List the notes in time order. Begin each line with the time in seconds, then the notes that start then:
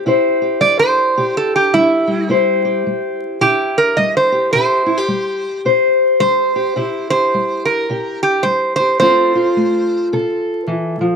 0.06 C3 E4 G4 C5
0.42 G4
0.61 G3 D5
0.79 C5
1.17 C3 G4
1.37 A4
1.56 G4
1.74 G3 E4
2.07 G3
2.29 C3 E4 G4 C5
2.65 G4
2.86 G3
3.41 C3 E4 G4
3.78 A#4
3.97 G3 D#5
4.17 C5
4.32 G4
4.53 C3 E4 G4 C5
4.86 E4
4.97 G4
5.08 G3
5.65 C3 C5
6.20 G3 C5
6.56 G4
6.76 C3 E4 G4
7.10 G4 C5
7.34 G3
7.65 A#4
7.90 C3 G4
8.23 G4
8.43 G3 C5
8.76 G4 C5
9.00 F3 C4 F4 A4 C5
9.35 F4
9.57 A3
10.13 C3 A4
10.67 E3
11.01 F3